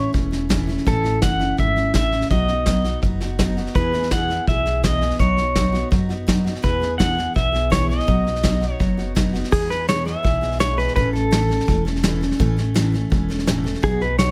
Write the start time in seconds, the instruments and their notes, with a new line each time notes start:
Already playing: steel-string acoustic guitar A3 C#4 E4, pedal steel guitar C#5
0.13 upright bass E1, steel-string acoustic guitar E3 A3 C#4 E4, kick, snare
0.31 steel-string acoustic guitar A3 C#4 E4, snare
0.49 steel-string acoustic guitar A2 E3 A3 C#4 E4, kick, snare, hi-hat pedal
0.67 steel-string acoustic guitar A3 C#4 E4, snare
0.77 snare
0.86 upright bass A1, steel-string acoustic guitar A2 E3 A3 C#4 E4, pedal steel guitar A4, kick, snare
1.04 steel-string acoustic guitar A3 C#4 E4, snare
1.22 upright bass F#1, steel-string acoustic guitar A2 E3 A3 C#4 E4, pedal steel guitar F#5, kick, snare, hi-hat pedal
1.40 steel-string acoustic guitar A3 C#4 E4, snare
1.57 upright bass G#1, steel-string acoustic guitar E3 A3 C#4 E4, pedal steel guitar E5, kick, snare
1.76 steel-string acoustic guitar A3 C#4 E4, snare
1.94 upright bass A1, steel-string acoustic guitar A2 E3 A3 C#4 E4, pedal steel guitar E5, kick, snare, hi-hat pedal
2.12 steel-string acoustic guitar A3 C#4 E4, snare
2.21 snare
2.30 upright bass B1, steel-string acoustic guitar B2 F#3 B3 D#4 F#4, pedal steel guitar D#5, kick, snare
2.48 steel-string acoustic guitar B3 D#4 F#4, snare
2.66 steel-string acoustic guitar B2 F#3 B3 D#4 F#4, kick, snare, hi-hat pedal
2.84 steel-string acoustic guitar B3 D#4 F#4, snare
3.02 upright bass F#1, steel-string acoustic guitar F#3 B3 D#4 F#4, kick, snare
3.20 steel-string acoustic guitar B3 D#4 F#4, snare
3.39 steel-string acoustic guitar B2 F#3 B3 D#4 F#4, kick, snare, hi-hat pedal
3.57 steel-string acoustic guitar B3 D#4 F#4, snare
3.66 snare
3.75 steel-string acoustic guitar E2 B2 E3 B3 E4 G#4, upright bass E2, pedal steel guitar B4, kick, snare
3.92 steel-string acoustic guitar E3 B3 E4 G#4, snare
4.03 snare
4.11 steel-string acoustic guitar E2 B2 E3 B3 E4 G#4, pedal steel guitar F#5, kick, snare, hi-hat pedal
4.28 steel-string acoustic guitar E3 B3 E4 G#4, snare
4.47 upright bass B1, steel-string acoustic guitar E3 B3 E4 G#4, pedal steel guitar E5, kick, snare
4.66 steel-string acoustic guitar E3 B3 E4 G#4, snare
4.83 steel-string acoustic guitar E2 B2 E3 B3 E4 G#4, pedal steel guitar D#5, kick, snare, hi-hat pedal
5.01 steel-string acoustic guitar E3 B3 E4 G#4, snare
5.10 snare
5.19 upright bass B1, steel-string acoustic guitar B2 F#3 B3 D#4 F#4, pedal steel guitar C#5, kick, snare
5.37 steel-string acoustic guitar B3 D#4 F#4, snare
5.55 steel-string acoustic guitar B2 F#3 B3 D#4 F#4, kick, snare, hi-hat pedal
5.72 steel-string acoustic guitar B3 D#4 F#4, snare
5.91 upright bass F#2, steel-string acoustic guitar F#3 B3 D#4 F#4, kick, snare
6.09 steel-string acoustic guitar B3 D#4 F#4, snare
6.27 steel-string acoustic guitar B2 F#3 B3 D#4 F#4, kick, snare, hi-hat pedal
6.44 steel-string acoustic guitar B3 D#4 F#4, snare
6.55 snare
6.62 steel-string acoustic guitar E2 B2 E3 B3 E4 G#4, upright bass E2, pedal steel guitar B4, kick, snare
6.80 steel-string acoustic guitar E3 B3 E4 G#4, snare
6.98 steel-string acoustic guitar E2 B2 E3 B3 E4 G#4, pedal steel guitar F#5, kick, snare, hi-hat pedal
7.16 steel-string acoustic guitar E3 B3 E4 G#4, snare
7.34 upright bass B1, steel-string acoustic guitar E3 B3 E4 G#4, pedal steel guitar E5, kick, snare
7.52 steel-string acoustic guitar E3 B3 E4 G#4, snare
7.70 steel-string acoustic guitar E2 B2 E3 B3 E4 G#4, pedal steel guitar C#5, kick, snare, hi-hat pedal
7.89 steel-string acoustic guitar E3 B3 E4 G#4, pedal steel guitar D#5, snare
8.00 snare
8.07 upright bass B1, steel-string acoustic guitar B2 F#3 B3 D#4 F#4, kick, snare
8.25 steel-string acoustic guitar B3 D#4 F#4, snare
8.35 snare
8.43 steel-string acoustic guitar B2 F#3 B3 D#4 F#4, kick, snare, hi-hat pedal
8.61 steel-string acoustic guitar B3 D#4 F#4, snare
8.72 pedal steel guitar C#5
8.79 upright bass F#1, steel-string acoustic guitar F#3 B3 D#4 F#4, kick, snare
8.97 steel-string acoustic guitar B3 D#4 F#4, snare
9.15 steel-string acoustic guitar B2 F#3 B3 D#4 F#4, kick, snare, hi-hat pedal
9.33 steel-string acoustic guitar B3 D#4 F#4, snare
9.44 snare
9.51 steel-string acoustic guitar E2 B2 E3 G#3 B3 G#4, upright bass E2, pedal steel guitar G#4, kick, snare, crash
9.69 steel-string acoustic guitar E3 G#3 B3 G#4, pedal steel guitar B4, snare
9.88 steel-string acoustic guitar E2 B2 E3 G#3 B3 G#4, pedal steel guitar C#5, snare, hi-hat pedal
10.05 steel-string acoustic guitar E3 G#3 B3 G#4, pedal steel guitar E5, snare
10.23 upright bass B1, steel-string acoustic guitar E3 G#3 B3 G#4, kick, snare
10.41 steel-string acoustic guitar E3 G#3 B3 G#4, snare
10.51 snare
10.59 steel-string acoustic guitar E2 B2 E3 G#3 B3 G#4, pedal steel guitar C#5, snare, hi-hat pedal
10.77 steel-string acoustic guitar E3 G#3 B3 G#4, pedal steel guitar B4, snare
10.88 snare
10.96 upright bass A1, steel-string acoustic guitar A2 E3 A3 C#4 A4, pedal steel guitar B4, kick, snare
11.13 steel-string acoustic guitar A3 C#4 A4, pedal steel guitar A4, snare
11.31 steel-string acoustic guitar A2 E3 A3 C#4 A4, snare, hi-hat pedal
11.49 steel-string acoustic guitar A3 C#4 A4, snare
11.60 snare
11.67 upright bass E1, steel-string acoustic guitar E3 A3 C#4 A4, kick, snare
11.85 steel-string acoustic guitar A3 C#4 A4, snare
11.96 snare
12.03 steel-string acoustic guitar A2 E3 A3 C#4 A4, snare, hi-hat pedal
12.21 steel-string acoustic guitar A3 C#4 A4, snare
12.31 snare
12.39 upright bass A1, steel-string acoustic guitar A2 E3 A3 C#4 A4, kick, snare
12.57 steel-string acoustic guitar A3 C#4 A4, snare
12.74 steel-string acoustic guitar A2 E3 A3 C#4 A4, snare, hi-hat pedal
12.92 steel-string acoustic guitar A3 C#4 A4, snare
13.10 upright bass E1, steel-string acoustic guitar E3 A3 C#4 A4, kick, snare
13.29 steel-string acoustic guitar A3 C#4 A4, snare
13.38 snare
13.47 steel-string acoustic guitar A2 E3 A3 C#4 A4, snare, hi-hat pedal
13.64 steel-string acoustic guitar A3 C#4 A4, snare
13.74 snare
13.82 upright bass B1, steel-string acoustic guitar B2 F#3 B3 D#4 F#4, pedal steel guitar G#4, kick, snare
14.00 steel-string acoustic guitar B3 D#4 F#4, pedal steel guitar B4, snare
14.18 steel-string acoustic guitar B2 F#3 B3 D#4 F#4, pedal steel guitar C#5, snare, hi-hat pedal